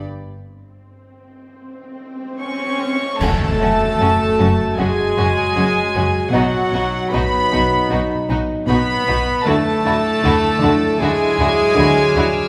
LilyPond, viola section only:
\new Staff \with { instrumentName = "Viola section" } { \time 4/4 \key a \dorian \tempo 4 = 77 r2. cis'4 | \key fis \minor a2 gis2 | fis4 b4. r8 b4 | a2 gis2 | }